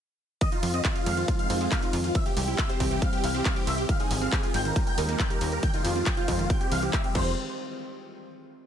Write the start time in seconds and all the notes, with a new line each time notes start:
0.41 D#3 G#3 C4 F4 D#5 D#6, kick, closed hi-hat, ride
0.52 D#4 F4 F5, closed hi-hat
0.63 F2 F3 F4 F5, open hi-hat, ride
0.74 C4 D#5 D#6, closed hi-hat
0.85 F4, kick, clap, closed hi-hat, ride
0.95 F4 F5, closed hi-hat
1.06 F2 G#3 F5 F6, open hi-hat, ride
1.17 D#3 F4 F5, closed hi-hat
1.28 F3 F4 F5, kick, closed hi-hat, ride
1.39 F5 F6, closed hi-hat
1.50 F2 C4 F4 F5, open hi-hat, ride
1.61 G#3 F4 F5, closed hi-hat
1.72 D#3 F5 F6, kick, clap, closed hi-hat, ride
1.82 D#4 F4 F5, closed hi-hat
1.93 F2 F4, open hi-hat, ride
2.04 F4 F5, closed hi-hat
2.15 E3 G3 C4 G4 E5 E6, kick, closed hi-hat, ride
2.26 G4 G5, closed hi-hat
2.37 C2 G3 G4 G5, open hi-hat, ride
2.48 E4 G4 G5, closed hi-hat
2.58 E5 E6, kick, clap, closed hi-hat, ride
2.69 G4 C5 G5, closed hi-hat
2.80 C2 C4 G4 G5, kick, open hi-hat, ride
2.91 E3 G4 G5, closed hi-hat
3.02 G3 F5 F6, kick, closed hi-hat, ride
3.13 G4 G5, closed hi-hat
3.24 C2 E4 F5 F6, open hi-hat, ride
3.34 C4 G4 G5, closed hi-hat
3.45 E3 F5 F6, kick, clap, closed hi-hat, ride
3.56 G4 G5, closed hi-hat
3.67 C2 C5 E5 E6, open hi-hat, ride
3.78 G4 G5, closed hi-hat
3.89 D#3 G#3 F4 F5 F6, kick, closed hi-hat, ride
4.00 D#4 G#4 G#5, closed hi-hat
4.11 G#1 F3 G#4 G#5, open hi-hat, ride
4.22 C4 F5 F6, closed hi-hat
4.32 G#4, kick, clap, closed hi-hat, ride
4.43 F4 G#4 G#5, closed hi-hat
4.54 G#1 G#3 G5 G6, open hi-hat, ride
4.65 D#3 A#4 A#5, closed hi-hat
4.76 G3 A#3 G4 A#4 A#5, kick, closed hi-hat, ride
4.87 G5 G6, closed hi-hat
4.98 D#2 D#4 A#4 A#5, open hi-hat, ride
5.09 A#3 A#4 A#5, closed hi-hat
5.19 D#3 G5 G6, kick, clap, closed hi-hat, ride
5.30 G4 A#4 A#5, closed hi-hat
5.41 D#2 A#4, open hi-hat, ride
5.52 A#4 A#5, closed hi-hat
5.63 D#3 G#3 C4 F4 G5 G6, kick, closed hi-hat, ride
5.74 D#4 F4 F5, closed hi-hat
5.85 F2 F3 F4 F5, open hi-hat, ride
5.96 C4 F4 F5, closed hi-hat
6.06 G5 G6, kick, clap, closed hi-hat, ride
6.17 F4 F5, closed hi-hat
6.28 F2 G#3 F4, kick, open hi-hat, ride
6.39 D#3 F4 F5, closed hi-hat
6.50 G3 G5 G6, kick, closed hi-hat, ride
6.61 G4 G5, closed hi-hat
6.72 C2 E3 F5 F6, open hi-hat, ride
6.82 E3 G4 G5, closed hi-hat
6.93 G3 E5 E6, kick, clap, closed hi-hat, ride
7.04 C4 G4 G5, closed hi-hat
7.15 F2 D#3 C5 C6, kick, crash